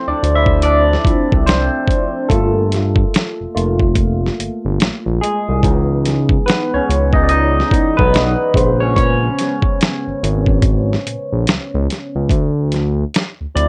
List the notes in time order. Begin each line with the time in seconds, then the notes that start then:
Already playing: F3 A3 C4 E4 A4 C5
0.08 D2 D4 D5
0.23 D2, closed hi-hat
0.36 E4 E5
0.46 kick
0.62 D4 D5, closed hi-hat
0.93 snare
1.05 C2 F3 C4 E4, kick, closed hi-hat
1.32 C2, kick
1.46 C4 C5, snare, closed hi-hat
1.88 kick, closed hi-hat
2.29 G1 A3 A#3 F4 A4, kick, closed hi-hat
2.72 snare, closed hi-hat
2.96 kick
3.14 snare, closed hi-hat
3.40 F1
3.55 F1 A3 A#3 F4, closed hi-hat
3.79 kick
3.95 kick, closed hi-hat
4.26 snare
4.39 G1, closed hi-hat
4.65 G1
4.80 A#1, snare, closed hi-hat
5.06 A#1
5.21 G#3 G#4, closed hi-hat
5.48 C2
5.63 C#2 E3 B3 D#4, kick, closed hi-hat
6.05 snare, closed hi-hat
6.29 kick
6.46 B3 B4, snare, closed hi-hat
6.74 C#2 C#4 C#5
6.89 C#2, closed hi-hat
7.13 D#4 D#5, kick
7.23 D5
7.29 D#4 D#5, closed hi-hat
7.60 snare
7.71 B1 E3 B3 D#4, kick, closed hi-hat
7.97 B1 B3 B4, kick
8.14 snare, closed hi-hat
8.54 A#1 C#3 G#3 C5, kick, closed hi-hat
8.80 C#4 C#5
8.96 C#4 C#5, kick, closed hi-hat
9.39 snare, closed hi-hat
9.63 kick
9.81 snare, closed hi-hat
10.07 G#1
10.23 G#1, closed hi-hat
10.46 kick
10.62 kick, closed hi-hat
10.93 snare
11.07 A#1, closed hi-hat
11.32 A#1
11.47 C#2, snare, closed hi-hat
11.74 C#2
11.90 snare, closed hi-hat
12.15 C#2
12.30 D2, kick, closed hi-hat
12.72 snare, closed hi-hat
13.14 snare, closed hi-hat
13.40 D2
13.55 D2 F3 C4 E4 D5, closed hi-hat